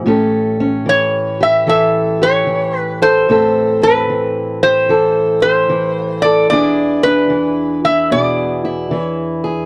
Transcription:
Already playing: E3
0.06 A2 C#4 G4 A4
0.60 C#4
0.86 E3 C#5
1.41 G4 E5
1.67 E3 A4 E5
2.22 G4 C#5
2.47 E3
2.78 B4
3.02 A4 C5
3.29 A2 C4 G4 A4
3.82 C4 B4
4.10 E3
4.63 G4 C5
4.89 E3 A4
5.42 G4 C5
5.69 E3
6.22 A4 D5
6.50 E2 D4 E4 G#4 D5
7.03 D4 B4
7.30 E3
7.84 E4 E5
8.11 B2 G#4 D5
8.65 E4
8.91 E3
8.97 C#5
9.44 G#4

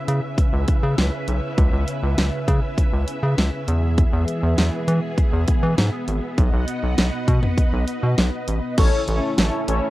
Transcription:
Already playing: C#3 C#4 B4 E5
0.08 C#3, closed hi-hat
0.38 kick, closed hi-hat
0.53 C#2
0.68 kick, closed hi-hat
0.83 C#3
0.98 C#2, snare, closed hi-hat
1.28 B1, closed hi-hat
1.58 C#2, kick, closed hi-hat
1.73 C#2
1.88 closed hi-hat
2.03 C#2
2.18 C#2, snare, closed hi-hat
2.48 C#3, kick, closed hi-hat
2.78 kick, closed hi-hat
2.93 C#2
3.08 closed hi-hat
3.23 C#3
3.38 C#2, snare, closed hi-hat
3.68 E2 E3 B3 G#4, closed hi-hat
3.98 kick, closed hi-hat
4.13 E2
4.28 closed hi-hat
4.43 E2
4.58 E2, snare, closed hi-hat
4.88 E3, closed hi-hat
5.18 kick, closed hi-hat
5.33 E2
5.48 kick, closed hi-hat
5.63 E3
5.78 G#2, snare, closed hi-hat
6.08 G#1, closed hi-hat
6.38 B1 B4 D#5 F#5, kick, closed hi-hat
6.53 B1
6.68 closed hi-hat
6.83 B1
6.98 B1, snare, closed hi-hat
7.28 B2, kick, closed hi-hat
7.43 mid tom
7.58 kick, closed hi-hat
7.73 B1
7.88 closed hi-hat
8.03 B2
8.18 B1, snare, closed hi-hat
8.48 A1, closed hi-hat
8.78 A1 A3 C#4 E4 A4 C#5, kick, closed hi-hat, crash
9.08 A1 C#4 E4 A4 C#5, closed hi-hat
9.38 A1 C#4 E4 A4 C#5, snare, closed hi-hat
9.68 A1 C#4 E4 A4 C#5, closed hi-hat

